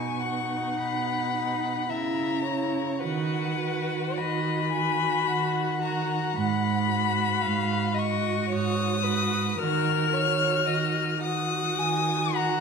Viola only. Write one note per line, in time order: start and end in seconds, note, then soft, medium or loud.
0.00 0.22 D#4 soft
0.23 1.32 D#4 medium
1.35 1.90 D#4 medium
1.91 2.45 E4 soft
2.47 3.00 E4 medium
3.03 3.59 F#4 soft
3.60 4.72 F#4 medium
4.75 5.78 F#4 medium
5.81 6.32 F#4 medium
6.87 7.95 F#4 medium
7.97 9.03 F#4 medium
9.06 9.58 F#4 medium
9.59 10.12 F#4 medium
10.13 11.20 F#4 medium
11.22 12.33 F#4 medium
12.36 12.60 F#4 medium